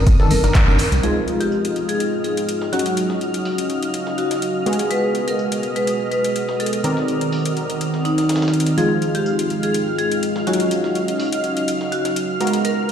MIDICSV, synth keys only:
0, 0, Header, 1, 2, 480
1, 0, Start_track
1, 0, Key_signature, -4, "minor"
1, 0, Tempo, 483871
1, 1027, Time_signature, 4, 2, 24, 8
1, 12815, End_track
2, 0, Start_track
2, 0, Title_t, "Synth keys"
2, 0, Program_c, 0, 88
2, 193, Note_on_c, 0, 51, 97
2, 194, Note_on_c, 0, 62, 84
2, 195, Note_on_c, 0, 69, 106
2, 317, Note_off_c, 0, 51, 0
2, 318, Note_off_c, 0, 62, 0
2, 318, Note_off_c, 0, 69, 0
2, 433, Note_on_c, 0, 51, 93
2, 434, Note_on_c, 0, 62, 86
2, 435, Note_on_c, 0, 70, 104
2, 643, Note_off_c, 0, 51, 0
2, 644, Note_off_c, 0, 62, 0
2, 644, Note_off_c, 0, 70, 0
2, 672, Note_on_c, 0, 51, 93
2, 674, Note_on_c, 0, 62, 83
2, 675, Note_on_c, 0, 70, 104
2, 797, Note_off_c, 0, 51, 0
2, 797, Note_off_c, 0, 62, 0
2, 798, Note_off_c, 0, 70, 0
2, 1023, Note_on_c, 0, 53, 75
2, 1025, Note_on_c, 0, 56, 68
2, 1027, Note_on_c, 0, 63, 66
2, 1028, Note_on_c, 0, 65, 83
2, 2678, Note_off_c, 0, 53, 0
2, 2679, Note_off_c, 0, 56, 0
2, 2680, Note_off_c, 0, 63, 0
2, 2681, Note_off_c, 0, 65, 0
2, 2704, Note_on_c, 0, 54, 76
2, 2705, Note_on_c, 0, 61, 67
2, 2707, Note_on_c, 0, 63, 67
2, 2709, Note_on_c, 0, 66, 80
2, 4598, Note_off_c, 0, 54, 0
2, 4599, Note_off_c, 0, 61, 0
2, 4600, Note_off_c, 0, 63, 0
2, 4601, Note_off_c, 0, 66, 0
2, 4624, Note_on_c, 0, 56, 72
2, 4625, Note_on_c, 0, 59, 70
2, 4627, Note_on_c, 0, 66, 70
2, 4629, Note_on_c, 0, 68, 78
2, 6758, Note_off_c, 0, 56, 0
2, 6759, Note_off_c, 0, 59, 0
2, 6760, Note_off_c, 0, 66, 0
2, 6761, Note_off_c, 0, 68, 0
2, 6783, Note_on_c, 0, 51, 78
2, 6785, Note_on_c, 0, 60, 69
2, 6787, Note_on_c, 0, 74, 67
2, 6789, Note_on_c, 0, 70, 83
2, 8678, Note_off_c, 0, 51, 0
2, 8679, Note_off_c, 0, 60, 0
2, 8680, Note_off_c, 0, 74, 0
2, 8681, Note_off_c, 0, 70, 0
2, 8704, Note_on_c, 0, 53, 75
2, 8705, Note_on_c, 0, 56, 68
2, 8707, Note_on_c, 0, 63, 67
2, 8709, Note_on_c, 0, 65, 82
2, 10358, Note_off_c, 0, 53, 0
2, 10359, Note_off_c, 0, 56, 0
2, 10360, Note_off_c, 0, 63, 0
2, 10361, Note_off_c, 0, 65, 0
2, 10384, Note_on_c, 0, 54, 73
2, 10386, Note_on_c, 0, 61, 71
2, 10387, Note_on_c, 0, 63, 67
2, 10389, Note_on_c, 0, 66, 79
2, 12278, Note_off_c, 0, 54, 0
2, 12279, Note_off_c, 0, 61, 0
2, 12280, Note_off_c, 0, 63, 0
2, 12281, Note_off_c, 0, 66, 0
2, 12304, Note_on_c, 0, 56, 75
2, 12305, Note_on_c, 0, 59, 71
2, 12307, Note_on_c, 0, 66, 69
2, 12309, Note_on_c, 0, 70, 84
2, 12815, Note_off_c, 0, 56, 0
2, 12815, Note_off_c, 0, 59, 0
2, 12815, Note_off_c, 0, 66, 0
2, 12815, Note_off_c, 0, 70, 0
2, 12815, End_track
0, 0, End_of_file